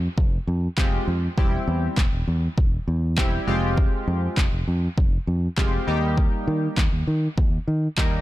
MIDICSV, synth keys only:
0, 0, Header, 1, 2, 480
1, 0, Start_track
1, 0, Key_signature, -4, "minor"
1, 0, Tempo, 600000
1, 1101, Time_signature, 4, 2, 24, 8
1, 6570, End_track
2, 0, Start_track
2, 0, Title_t, "Synth keys"
2, 0, Program_c, 0, 88
2, 618, Note_on_c, 0, 56, 81
2, 620, Note_on_c, 0, 60, 70
2, 621, Note_on_c, 0, 65, 70
2, 622, Note_on_c, 0, 67, 92
2, 854, Note_off_c, 0, 56, 0
2, 855, Note_off_c, 0, 60, 0
2, 855, Note_off_c, 0, 65, 0
2, 856, Note_off_c, 0, 67, 0
2, 1100, Note_on_c, 0, 55, 84
2, 1101, Note_on_c, 0, 60, 75
2, 1102, Note_on_c, 0, 64, 77
2, 1104, Note_on_c, 0, 67, 90
2, 1570, Note_off_c, 0, 55, 0
2, 1570, Note_off_c, 0, 60, 0
2, 1571, Note_off_c, 0, 64, 0
2, 1571, Note_off_c, 0, 67, 0
2, 2538, Note_on_c, 0, 55, 77
2, 2540, Note_on_c, 0, 60, 75
2, 2540, Note_on_c, 0, 64, 75
2, 2542, Note_on_c, 0, 67, 87
2, 2770, Note_off_c, 0, 60, 0
2, 2772, Note_off_c, 0, 67, 0
2, 2774, Note_off_c, 0, 55, 0
2, 2775, Note_off_c, 0, 64, 0
2, 2777, Note_on_c, 0, 56, 87
2, 2779, Note_on_c, 0, 60, 81
2, 2781, Note_on_c, 0, 65, 83
2, 2781, Note_on_c, 0, 67, 96
2, 3547, Note_off_c, 0, 56, 0
2, 3548, Note_off_c, 0, 60, 0
2, 3549, Note_off_c, 0, 65, 0
2, 3549, Note_off_c, 0, 67, 0
2, 4458, Note_on_c, 0, 56, 81
2, 4459, Note_on_c, 0, 60, 73
2, 4461, Note_on_c, 0, 65, 75
2, 4462, Note_on_c, 0, 67, 91
2, 4691, Note_off_c, 0, 67, 0
2, 4694, Note_off_c, 0, 56, 0
2, 4694, Note_off_c, 0, 60, 0
2, 4695, Note_off_c, 0, 65, 0
2, 4697, Note_on_c, 0, 55, 83
2, 4698, Note_on_c, 0, 58, 75
2, 4700, Note_on_c, 0, 63, 78
2, 4701, Note_on_c, 0, 67, 93
2, 5467, Note_off_c, 0, 55, 0
2, 5467, Note_off_c, 0, 58, 0
2, 5468, Note_off_c, 0, 63, 0
2, 5469, Note_off_c, 0, 67, 0
2, 6379, Note_on_c, 0, 55, 81
2, 6380, Note_on_c, 0, 58, 75
2, 6381, Note_on_c, 0, 63, 76
2, 6383, Note_on_c, 0, 70, 88
2, 6570, Note_off_c, 0, 55, 0
2, 6570, Note_off_c, 0, 58, 0
2, 6570, Note_off_c, 0, 63, 0
2, 6570, Note_off_c, 0, 70, 0
2, 6570, End_track
0, 0, End_of_file